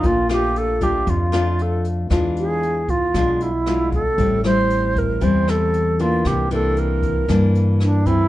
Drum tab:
HH |xxxxxxxx|xxxxxxxx|xxxxxxxx|xxxxxxxx|
SD |-r---r--|r---r-r-|-r---r--|r---r-r-|
BD |o--oo---|o--oo--o|o--oo---|o--oo--o|